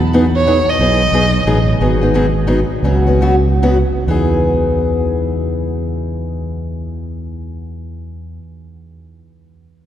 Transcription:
Already playing: E2
0.13 E3 B3 D#4 G#4
0.36 C#5
0.47 E3 B3 D#4 G#4
0.70 D#5
0.79 B1 E3 B3 D#4 G#4
1.12 B1 E3 B3 D#4 G#4
1.46 A1 E3 B3 D#4 G#4
1.80 G#1 D#3 F#3 B3 D#4 G#4
2.01 B3 D#4 G#4
2.14 D#3 F#3 B3 D#4 G#4
2.47 D#3 F#3 B3 D#4 G#4
2.83 C#2 C#3 F#3 B3 C#4 F#4
3.07 B3 C#4 F#4
3.21 C#3 F#3 B3 C#4 F#4
3.62 C#3 F#3 B3 C#4 F#4
4.07 E2 E3 B3 D#4 G#4

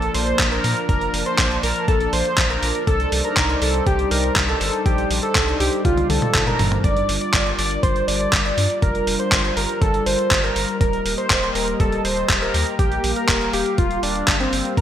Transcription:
Already playing: F3 A#3 D4 A4 A#4 D5
0.02 closed hi-hat
0.14 A#1 C5, open hi-hat
0.27 closed hi-hat
0.39 A#1, kick, clap, closed hi-hat
0.52 A#4, closed hi-hat
0.64 A#2, open hi-hat
0.77 closed hi-hat
0.89 F1 A#4 A5, kick, closed hi-hat
1.01 closed hi-hat
1.14 F1, open hi-hat
1.26 C5, closed hi-hat
1.39 A#1, kick, clap, closed hi-hat
1.51 closed hi-hat
1.63 A#1 A#4, open hi-hat
1.76 closed hi-hat
1.88 A#1 A4, kick, closed hi-hat
2.00 closed hi-hat
2.13 A#1 C5, open hi-hat
2.25 closed hi-hat
2.38 A#1, kick, clap, closed hi-hat
2.50 A#4, closed hi-hat
2.62 A#1, open hi-hat
2.75 closed hi-hat
2.87 C2 G3 D4 D#4 A4 C5, kick, closed hi-hat
3.00 closed hi-hat
3.12 C2, open hi-hat
3.25 A#4, closed hi-hat
3.37 C2, kick, clap, closed hi-hat
3.49 closed hi-hat
3.62 C2 A4, open hi-hat
3.74 closed hi-hat
3.87 C2 G4, kick, closed hi-hat
3.99 closed hi-hat
4.11 C2 A#4, open hi-hat
4.24 closed hi-hat
4.36 C2, kick, clap, closed hi-hat
4.48 A4, closed hi-hat
4.61 G1, open hi-hat
4.73 closed hi-hat
4.86 A#1 G4, kick, closed hi-hat
4.98 closed hi-hat
5.10 A#1, open hi-hat
5.23 A4, closed hi-hat
5.35 C2, kick, clap, closed hi-hat
5.48 closed hi-hat
5.60 C2 G4, open hi-hat
5.73 closed hi-hat
5.85 C2 F4, kick, closed hi-hat, high tom
5.98 closed hi-hat, high tom
6.10 C2 A4, open hi-hat, high tom
6.22 closed hi-hat, mid tom
6.34 G1, kick, clap, closed hi-hat, mid tom
6.47 A#4, closed hi-hat, mid tom
6.59 G1, mid tom, open hi-hat
6.72 closed hi-hat, mid tom
6.84 G1 F4 A#4 D5, kick, closed hi-hat
6.97 closed hi-hat
7.09 G1, open hi-hat
7.21 D5, closed hi-hat
7.34 G1, kick, clap, closed hi-hat
7.46 closed hi-hat
7.58 G1 D5, open hi-hat
7.71 closed hi-hat
7.83 G1 C5, kick, closed hi-hat
7.96 closed hi-hat
8.08 G1 D5, open hi-hat
8.21 closed hi-hat
8.33 G1, kick, clap, closed hi-hat
8.45 D5, closed hi-hat
8.57 G2, open hi-hat
8.70 closed hi-hat
8.82 F1 A#4, kick, closed hi-hat
8.95 closed hi-hat
9.07 F1, open hi-hat
9.19 C5, closed hi-hat
9.32 G1, kick, clap, closed hi-hat
9.45 closed hi-hat
9.57 G1 A#4, open hi-hat
9.69 closed hi-hat
9.82 G1 A4, kick, closed hi-hat
9.94 closed hi-hat
10.06 G1 C5, open hi-hat
10.19 closed hi-hat
10.31 G1, kick, clap, closed hi-hat
10.44 A#4, closed hi-hat
10.56 G1, open hi-hat
10.68 closed hi-hat
10.81 D#1 A#3 G4 A#4 D#5, kick, closed hi-hat
10.93 closed hi-hat
11.06 D#1, open hi-hat
11.18 C5, closed hi-hat
11.30 D#1, kick, clap, closed hi-hat
11.43 closed hi-hat
11.55 D#1 A#4, open hi-hat
11.68 closed hi-hat
11.80 D#1 A4, kick, closed hi-hat
11.92 closed hi-hat
12.05 D#1 C5, open hi-hat
12.17 closed hi-hat
12.29 D#1, kick, clap, closed hi-hat
12.42 A#4, closed hi-hat
12.54 D#2, open hi-hat
12.67 closed hi-hat
12.79 A#1 G4 F5, kick, closed hi-hat
12.92 closed hi-hat
13.04 A#1, open hi-hat
13.16 A#4, closed hi-hat
13.29 D#1, kick, clap, closed hi-hat
13.41 closed hi-hat
13.53 D#1 G4, open hi-hat
13.66 closed hi-hat
13.78 D#1 F4, kick, closed hi-hat
13.91 closed hi-hat
14.03 D#1 D4, open hi-hat
14.15 closed hi-hat
14.28 G1, kick, clap, closed hi-hat
14.40 C4, closed hi-hat
14.53 G1, open hi-hat
14.65 closed hi-hat
14.77 A#1 F3 D4 A#4 D5, kick, closed hi-hat

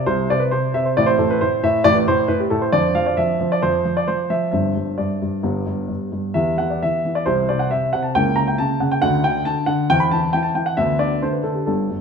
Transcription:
Already playing: C4 E4
0.06 C2 C3 C5
0.30 C3 D5
0.40 B4
0.51 C3 C5
0.74 C3 E5
0.85 C5
0.97 A1 A2 C4 E4 D5
1.06 C5
1.18 A2 A4
1.30 B4
1.41 A2 C5
1.63 A2 E5
1.84 A1 A2 D5
1.95 B4
2.08 A2 C5
2.28 A2 B4
2.40 G4
2.50 A2 A4
2.62 C5
2.72 F2 F3 C4 D4 D5
2.95 F3 F5
3.06 D5
3.17 F3 E5
3.41 F3
3.52 D5
3.62 F2 F3 C5
3.85 F3
3.97 D5
4.08 F3 C5
4.30 F3 E5
4.51 G1 G2 C4 D4 E5
4.76 G2
4.98 G2 D5
5.22 G2
5.43 G1 G2 B3 G4
5.66 G2
5.88 G2
6.12 G2
6.34 E2 E3 B3 G4 E5
6.58 E3 F#5
6.70 D5
6.82 E3 E5
7.05 E3
7.15 D5
7.26 C2 C3 C4 E4 C5
7.49 C3 D5
7.59 F#5
7.71 C3 E5
7.93 C3 F#5
8.03 A5
8.15 C#2 C#3 A#3 E4 G5
8.36 C#3 A#5
8.48 G5
8.58 C#3 A5
8.80 C#3 F#5
8.91 G5
9.01 D2 D3 A3 D4 F#5
9.24 D3 G5
9.45 D3 A5
9.66 D3 F#5
9.90 E2 E3 C4 G5
10.00 B5
10.11 E3 A5
10.33 E3 G5
10.43 A5
10.55 E3 G5
10.66 F#5
10.77 D2 D3 B3 D4 E5
10.99 D3 D5
11.22 D3 A3 D4 C5
11.32 B4
11.43 D3 A4
11.55 G4
11.66 G1 G2 B3 D4 A4
11.90 G2

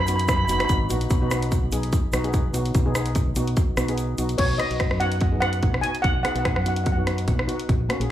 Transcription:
Already playing: F#2
0.06 B3 D#4 F#4 B5, closed hi-hat, shaker
0.15 B5, shaker
0.19 B5, closed hi-hat
0.28 B5, kick, cross-stick, closed hi-hat, shaker
0.36 B5
0.45 B3 D#4 B5, shaker
0.49 F#1 F#4 B5, closed hi-hat
0.59 B3 D#4 F#4 B5, cross-stick, closed hi-hat, shaker
0.65 B5, shaker
0.69 G#1, kick, closed hi-hat
0.89 A#1 B3 D#4 F#4, closed hi-hat, shaker
1.01 closed hi-hat, shaker
1.10 B1, kick, closed hi-hat, shaker
1.21 B3 D#4 F#4
1.31 B3 D#4 F#4, cross-stick, closed hi-hat, shaker
1.42 closed hi-hat, shaker
1.52 kick, closed hi-hat, shaker
1.63 B1
1.72 B1 B3 D#4 G#4, closed hi-hat, shaker
1.83 closed hi-hat
1.93 kick, closed hi-hat, shaker
2.13 B1 B3 D#4 F#4, cross-stick, closed hi-hat, shaker
2.24 B3 D#4 G#4, closed hi-hat, shaker
2.33 kick, closed hi-hat, shaker
2.53 B1 B3 D#4 F#4, closed hi-hat, shaker
2.65 closed hi-hat, shaker
2.75 B1, kick, closed hi-hat, shaker
2.86 B3 D#4 G#4
2.95 B3 D#4 G#4, cross-stick, closed hi-hat, shaker
3.06 closed hi-hat, shaker
3.15 kick, closed hi-hat, shaker
3.27 B1
3.36 B1 B3 D#4 F#4, closed hi-hat, shaker
3.48 closed hi-hat
3.57 kick, closed hi-hat, shaker
3.77 B1 B3 D#4 F#4, cross-stick, closed hi-hat, shaker
3.88 B3 D#4 G#4, closed hi-hat, shaker
3.98 closed hi-hat, shaker
4.18 B1 B3 D#4 F#4, closed hi-hat, shaker
4.29 closed hi-hat, shaker
4.38 B1 C#5, kick, closed hi-hat, crash
4.58 B3 D#4 F#4 D#5, cross-stick, closed hi-hat
4.70 B1 B3 D#4 F#4, closed hi-hat
4.80 kick, cross-stick, closed hi-hat
4.91 F#2, cross-stick
5.00 B3 D#4 F#4 F#5, closed hi-hat
5.12 closed hi-hat
5.21 kick, closed hi-hat
5.32 B3 D#4 G#4
5.40 B3 D#4 F#4 F#5, cross-stick, closed hi-hat
5.53 closed hi-hat
5.63 B1, kick, closed hi-hat
5.74 cross-stick
5.81 B3 D#4 F#4 G#5, closed hi-hat
5.95 closed hi-hat
6.02 B1 F#5, kick, closed hi-hat
6.23 B3 D#4 G#4 F#5, cross-stick, closed hi-hat
6.32 B1 B3 D#4 F#4 F#5, closed hi-hat
6.39 F#5
6.45 F#5, kick, cross-stick, closed hi-hat
6.54 F#2 F#5, cross-stick
6.61 B3 F#5
6.66 D#4 F#4 F#5, closed hi-hat
6.76 F#5, closed hi-hat
6.84 F#5, kick, closed hi-hat
6.92 F#5
6.97 B3 D#4 F#4
7.06 B3 D#4 F#4, cross-stick, closed hi-hat
7.18 closed hi-hat
7.28 B1, kick, closed hi-hat
7.39 cross-stick
7.47 B3 D#4 F#4, closed hi-hat
7.60 closed hi-hat
7.69 A#1, kick, closed hi-hat
7.89 A#3 C#4 F#4, cross-stick, closed hi-hat
8.00 A#1 A#3 C#4 G#4, closed hi-hat

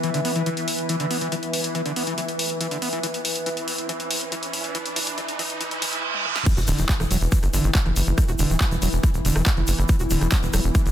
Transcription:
Already playing: E3 B3 E4 B4 E5, riser
0.03 E3, closed hi-hat
0.14 D3, closed hi-hat
0.25 B3, open hi-hat
0.36 E3, closed hi-hat
0.46 E3, closed hi-hat
0.57 closed hi-hat
0.68 open hi-hat
0.78 closed hi-hat
0.89 E3, closed hi-hat
1.00 D3, closed hi-hat
1.11 B3, open hi-hat
1.21 E3, closed hi-hat
1.32 E3, closed hi-hat
1.43 closed hi-hat
1.53 open hi-hat
1.64 closed hi-hat
1.75 E3, closed hi-hat
1.86 D3, closed hi-hat
1.96 B3, open hi-hat
2.07 E3, closed hi-hat
2.18 E3, closed hi-hat
2.28 closed hi-hat
2.39 open hi-hat
2.50 closed hi-hat
2.61 E3, closed hi-hat
2.71 D3, closed hi-hat
2.82 B3, open hi-hat
2.93 E3, closed hi-hat
3.03 E3, closed hi-hat
3.14 closed hi-hat
3.25 open hi-hat
3.36 closed hi-hat
3.46 E3, closed hi-hat
3.57 closed hi-hat
3.68 open hi-hat
3.78 closed hi-hat
3.89 E3, closed hi-hat
4.00 closed hi-hat
4.11 open hi-hat
4.21 closed hi-hat
4.32 E3, closed hi-hat
4.43 closed hi-hat
4.53 open hi-hat
4.64 closed hi-hat
4.75 E3, closed hi-hat
4.86 closed hi-hat
4.96 E3, open hi-hat
5.07 closed hi-hat
5.18 E3, closed hi-hat
5.28 closed hi-hat
5.39 E3, open hi-hat
5.50 closed hi-hat
5.61 E3, closed hi-hat, reverse cymbal
5.71 closed hi-hat
5.82 E3, open hi-hat
5.93 closed hi-hat
6.14 high tom
6.25 mid tom
6.36 snare
6.46 E3 B3, kick, closed hi-hat, crash, impact, shaker
6.57 E1 E4 F#4, closed hi-hat, shaker
6.67 D1 D3, cross-stick, open hi-hat, shaker
6.78 E1 E3, closed hi-hat, shaker
6.89 G3, kick, clap, closed hi-hat, shaker
7.00 E1 E3, cross-stick, closed hi-hat, shaker
7.11 E1 F#3, open hi-hat, shaker
7.21 E1, closed hi-hat, shaker
7.32 E3, kick, closed hi-hat, shaker
7.43 G1, cross-stick, closed hi-hat, shaker
7.53 G1 D3, open hi-hat, shaker
7.64 G1 E3, closed hi-hat, shaker
7.75 G3, kick, clap, closed hi-hat, shaker
7.86 F#1 E3, cross-stick, closed hi-hat
7.96 F#1, open hi-hat, shaker
8.07 F#1, closed hi-hat, shaker
8.18 E3, kick, cross-stick, closed hi-hat, shaker
8.28 E1 F#4, closed hi-hat, shaker
8.39 E1 D3, open hi-hat, shaker
8.50 D1 E3, closed hi-hat, shaker
8.61 G3, kick, cross-stick, clap, closed hi-hat, shaker
8.71 E1 E3, closed hi-hat, shaker
8.82 E1 F#3, open hi-hat, shaker
8.92 E1, closed hi-hat, shaker
9.03 E3, kick, cross-stick, closed hi-hat, shaker
9.14 E1, closed hi-hat, shaker
9.25 E1 D3, open hi-hat, shaker
9.36 E1 E3, cross-stick, closed hi-hat, shaker
9.46 G3, kick, clap, closed hi-hat, shaker
9.57 F#1 E3, closed hi-hat
9.67 F#1, open hi-hat, shaker
9.78 F#1, cross-stick, closed hi-hat, shaker
9.89 E3, kick, closed hi-hat, shaker
9.99 E1 F#4, closed hi-hat, shaker
10.10 D1 D3, open hi-hat, shaker
10.21 E1 E3, cross-stick, closed hi-hat, shaker
10.31 G3, kick, clap, closed hi-hat, shaker
10.43 E1 E3, closed hi-hat, shaker
10.53 E1 F#3, cross-stick, open hi-hat, shaker
10.64 E1, closed hi-hat, shaker
10.75 E3, kick, closed hi-hat, shaker
10.86 G1, closed hi-hat, shaker

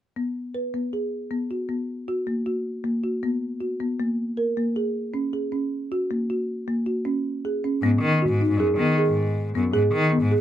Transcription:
0.16 B3
0.55 B4
0.74 B3
0.93 G#4
1.31 B3
1.51 F#4
1.69 B3
2.08 F#4
2.27 A#3
2.46 F#4
2.84 A#3
3.04 F#4
3.23 B3
3.60 F#4
3.80 B3
4.00 A#3
4.37 A#4
4.57 A#3
4.76 G#4
5.14 C#4
5.33 G#4
5.52 C#4
5.92 F#4
6.11 A#3
6.30 F#4
6.68 A#3
6.86 F#4
7.05 C#4
7.45 G#4
7.64 C#4
7.82 G#2 B3
8.01 D#3
8.22 F#4
8.29 G#2
8.41 D#4
8.50 G#2
8.59 F#2 G#4
8.78 D#3 B3
8.98 G#4
9.07 G#2
9.55 F#2 B3
9.74 G#2 G#4
9.94 D#3
10.12 B3
10.22 G#2
10.31 G#4

